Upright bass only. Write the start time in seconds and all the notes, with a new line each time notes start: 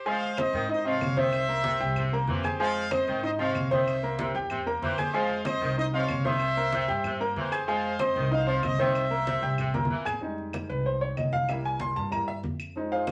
0.53 G#2
1.01 C2
1.81 C2
2.28 F2
3.07 G#2
3.55 C2
4.35 E2
4.82 F2
5.61 C2
6.09 C2
6.88 G2
7.36 F2
8.16 C2
8.63 C2
9.43 C2
9.90 F2
10.70 C2
11.17 C2
11.96 G2
12.44 F2